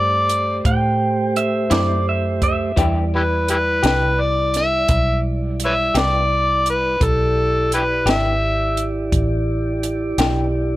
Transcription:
Already playing: G2 A3 G4 C5 D5
0.29 closed hi-hat
0.65 A2 G5, kick, closed hi-hat
1.36 E5, closed hi-hat
1.70 F#2 A2 G3 C4 E4 D5, snare, closed hi-hat
2.09 E5
2.42 E5, kick, closed hi-hat
2.76 E2 E3 G3 B3 D4 E4 G4 D5, kick, closed hi-hat
3.15 E4 G4 B4
3.48 E4 G4 B4, closed hi-hat
3.83 C2 E3 B3 D4 G4, snare, closed hi-hat
4.21 D5
4.54 E5, snare, closed hi-hat
4.88 B1, kick, closed hi-hat
5.60 closed hi-hat
5.65 B4 C#5 E5
5.95 C2 E3 B3 D4 G4 D5, snare, closed hi-hat
6.66 B4, closed hi-hat
7.00 B1 E4 G4 D5, kick, closed hi-hat
7.04 A4
7.72 E4 G4 B4, closed hi-hat
8.05 G#1 E3 B3 D4 G4, snare, closed hi-hat
8.10 E5
8.77 closed hi-hat
9.12 A1, kick, closed hi-hat
9.83 closed hi-hat
10.18 B1 E3 B3 D4 G4, snare, closed hi-hat

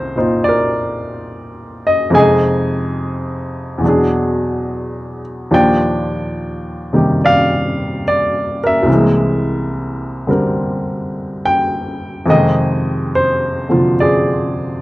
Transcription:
Already playing: C2 C3 D#3 C4 A#4 C5 D#5
0.16 A#2 D#4 F4 C5
0.44 D5
0.49 A#4
1.87 D#5
2.10 F2 C3 G#3 D#4
2.14 G#4 G#5
2.19 D#5
3.78 E2 B2
3.84 F#3 D4
3.89 G#4
5.51 D#2 A#2 F3 D4 G4 D5 G5
6.93 C3 D#3 G3 G4
7.25 D5 F5
8.08 D5
8.64 A#4 E5
8.83 C2 C3
8.89 E3 A#3
8.94 G#3
10.27 D3 G3 C4 A#4
11.46 G5
12.26 F2 C3 D#3 G#3
12.30 G#4 D#5 G5
13.15 C5
13.69 C3 D3 F3 F4
14.00 G#4 D5

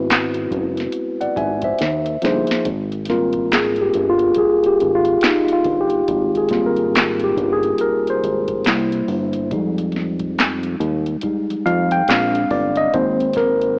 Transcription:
Already playing: G#1 G#3 B3 C4 E4 F#4 B4
0.10 snare, clap, closed hi-hat
0.34 closed hi-hat
0.51 F#1, kick, closed hi-hat
0.77 snare, closed hi-hat
0.92 closed hi-hat
1.21 G#1 D5 F#5, closed hi-hat
1.37 G#1 E5 G#5, kick, closed hi-hat
1.62 C5 E5, kick, closed hi-hat
1.79 D#2, snare, closed hi-hat
2.06 closed hi-hat
2.22 G1 F3 A#3 D#4 G#4, snare, closed hi-hat
2.26 C5
2.47 closed hi-hat
2.51 snare
2.65 G#1, kick, closed hi-hat
2.92 closed hi-hat
3.05 G3 A#3, closed hi-hat
3.10 C4 F4 A#4, snare
3.33 kick, closed hi-hat
3.52 G#4, snare, clap, closed hi-hat
3.76 closed hi-hat
3.81 G4
3.94 G1, closed hi-hat
4.09 F4
4.19 closed hi-hat
4.34 G#4, kick, closed hi-hat
4.64 G#1 G4, closed hi-hat
4.80 G#1, closed hi-hat
4.95 F4
5.05 closed hi-hat
5.21 D#4, snare, clap, closed hi-hat
5.48 closed hi-hat
5.52 F4
5.64 G1, kick, open hi-hat
5.81 G4
5.90 closed hi-hat
6.08 G#1, kick, closed hi-hat
6.35 G#4, closed hi-hat
6.49 G3 A#3 C4 F4, kick, closed hi-hat
6.53 snare
6.67 A#4
6.77 closed hi-hat
6.95 snare, clap, closed hi-hat
7.20 closed hi-hat
7.24 G4
7.37 G1, kick, closed hi-hat
7.53 G#4
7.63 closed hi-hat
7.78 A#4, closed hi-hat
8.07 G#1 C5, closed hi-hat
8.24 G#1, closed hi-hat
8.48 kick, closed hi-hat
8.65 C2 G3 A#3 E4, snare, clap, closed hi-hat
8.92 closed hi-hat
9.08 G1, open hi-hat
9.33 closed hi-hat
9.51 F2 G3 G#3 D#4, kick, closed hi-hat
9.78 closed hi-hat
9.92 closed hi-hat
9.96 snare
10.19 kick, closed hi-hat
10.38 snare, clap, closed hi-hat
10.63 closed hi-hat
10.80 D#2, closed hi-hat
11.06 closed hi-hat
11.21 G3 G#3 D#4, kick, closed hi-hat
11.50 F2, closed hi-hat
11.66 F2 F5, closed hi-hat
11.91 G5, closed hi-hat
12.08 A#1 G#3 C4 D4 F5, snare, clap, closed hi-hat
12.35 closed hi-hat
12.51 G1 D5, kick, open hi-hat
12.76 D#5, closed hi-hat
12.94 G#1 G#3 A#3 C4 C5, kick, closed hi-hat
13.20 closed hi-hat
13.33 A#4, kick, closed hi-hat
13.38 snare
13.62 closed hi-hat

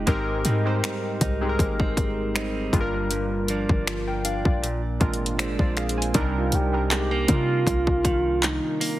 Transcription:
Already playing: G#3 D#4 G4
0.07 G#1 G#2 G#3 C4 D#4 G4 A#4, kick, closed hi-hat
0.45 G#2 G3 C4 D#4, closed hi-hat
0.65 G#3 C4 D#4 G4 C5
0.83 G3, finger snap, closed hi-hat
1.21 C2 D#4, kick, closed hi-hat
1.41 G#3 C4 D#4 G4 G#4
1.49 A#4
1.59 G#1 A#3, kick, closed hi-hat
1.80 C4, kick
1.97 kick, closed hi-hat
2.35 G3 C4 D#4, finger snap, closed hi-hat
2.73 G1 G2 G3 A#3 D4 F4 G#4, kick, closed hi-hat
2.81 A#4
3.11 G2, closed hi-hat
3.48 F3 A#3 D4, closed hi-hat
3.69 G1, kick
3.87 F3 F4 D5, finger snap, closed hi-hat
4.08 A#4 G5
4.25 D4 F5, closed hi-hat
4.45 A#1 F4 D5, kick
4.63 A#2, closed hi-hat
5.00 G#1 G#3 C4 D4 F4 A#4, kick, closed hi-hat
5.14 closed hi-hat
5.26 closed hi-hat
5.39 G#3 C4 D4, finger snap, closed hi-hat
5.59 A#1 F4 D5, kick
5.77 G#4 F5, finger snap, closed hi-hat
5.89 closed hi-hat
5.98 C5 G#5
6.02 closed hi-hat
6.14 C2 C3 G3 C4 D4 D#4 A#4, kick, closed hi-hat
6.36 F4
6.52 C2 G4, closed hi-hat
6.73 G3 C4 D4 D#4 A#4
6.91 G#3 G4, clap, closed hi-hat
7.11 A#3
7.28 C3 G3 C4 D4 D#4 F4 A#4, kick, closed hi-hat
7.67 C2, kick, closed hi-hat
7.87 kick
8.05 D#3, kick, closed hi-hat
8.43 D#4, clap, closed hi-hat
8.81 A#3, open hi-hat

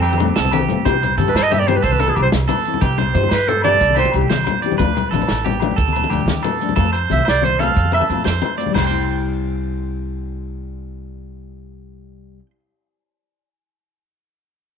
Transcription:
Already playing: F2 C4 A4
0.02 G4, closed hi-hat, low conga, low agogo
0.13 muted conga
0.18 A3, closed hi-hat, low conga, low agogo
0.22 C4
0.28 high conga
0.36 C2 A4, snare, closed hi-hat
0.45 low conga
0.51 G4, closed hi-hat, muted conga, high conga, low agogo
0.69 D2 A3 F4, closed hi-hat, low conga
0.85 C2 E3 C4 E4 G4 C5, kick, closed hi-hat, muted conga, low agogo
1.02 closed hi-hat, low conga, low agogo
1.17 G2 E3 C4 E4 G4 A4, closed hi-hat, high conga
1.28 B4, muted conga, low conga
1.34 G2 C5, snare, closed hi-hat, low agogo
1.43 D#5
1.51 G4 E5, closed hi-hat, high conga, low conga
1.59 D5
1.67 E3 C4 E4 G4 C5, closed hi-hat, muted conga, low agogo
1.76 B4, low conga
1.83 C2 A4 C5, kick, closed hi-hat
1.92 B4, high conga
2.00 A4, closed hi-hat, low conga, low agogo
2.08 G#4, muted conga
2.16 C2 E3 C4 E4 G4, closed hi-hat, low agogo
2.22 C5, low conga
2.32 C2, snare, closed hi-hat, high conga
2.48 A4, closed hi-hat, muted conga, low conga, low agogo
2.65 E3 C4 E4, closed hi-hat, low conga
2.74 high conga, low conga
2.81 C2 G4, kick, closed hi-hat, muted conga, low agogo
2.98 C5, closed hi-hat, low conga, low agogo
3.14 G2 E3 C4 E4 G4 C5, closed hi-hat, high conga
3.23 muted conga, low conga
3.29 G2 B4 C5, snare, closed hi-hat, low agogo
3.48 A4, closed hi-hat, low conga
3.62 E3 C4 E4 A4 D5, closed hi-hat, muted conga, low agogo
3.66 G4
3.73 low conga
3.81 C2, kick, closed hi-hat
3.90 high conga
3.94 G4 C5, closed hi-hat, low conga, low agogo
4.05 muted conga
4.12 C2 E3 C4, closed hi-hat, low agogo
4.16 E4 G4
4.21 low conga
4.30 C2 C5, snare, closed hi-hat, high conga
4.44 closed hi-hat, muted conga, low conga, low agogo
4.62 E3 C4 E4 G4 D5, closed hi-hat, low conga
4.72 high conga, low conga
4.78 D2 F3 A3 D4 F4 B4, kick, closed hi-hat, muted conga, low agogo
4.95 closed hi-hat, low conga, low agogo
5.11 A1 F3 A3 A4, closed hi-hat, high conga
5.15 D4 F4
5.22 muted conga, low conga
5.28 A1, snare, closed hi-hat, low agogo
5.44 G4, closed hi-hat, high conga, low conga
5.60 F3 A3 D4 F4, closed hi-hat, muted conga, low agogo
5.71 low conga
5.76 D2 A4, kick, closed hi-hat
5.88 high conga
5.93 closed hi-hat, low conga, low agogo
6.04 muted conga
6.10 D2 F3 A3 D4 F4 G4, closed hi-hat, low agogo
6.20 low conga
6.26 D2, snare, closed hi-hat, high conga
6.43 A4, closed hi-hat, muted conga, low conga, low agogo
6.61 F3 A3 D4, closed hi-hat, low conga
6.69 high conga, low conga
6.76 F2 A3 F4 A4, muted nylon-string guitar stroke, kick, closed hi-hat, muted conga, low agogo
6.92 C5, closed hi-hat, low agogo
7.02 low conga
7.10 C2 A3 C4 F4 E5, closed hi-hat, high conga, low conga
7.18 muted conga
7.25 C2 C5 D5, snare, closed hi-hat, low agogo
7.42 C5, closed hi-hat, high conga, low conga
7.59 A3 C4 A4 F5, closed hi-hat, muted conga, low agogo
7.63 F4
7.68 low conga
7.76 F2, kick, closed hi-hat
7.85 high conga
7.92 A4 E5, closed hi-hat, low conga, low agogo
8.01 muted conga
8.09 F2 A3 C4 F4, closed hi-hat, low conga, low agogo
8.18 low conga
8.24 F2 C5, snare, closed hi-hat, high conga
8.42 closed hi-hat, muted conga, low conga, low agogo
8.58 A3 C4 F4 D5, closed hi-hat
8.66 high conga, low conga
8.70 G3, muted conga
8.75 C2 C5, snare, floor tom, crash, low agogo
8.81 C4 G5
8.87 C6
8.91 E4

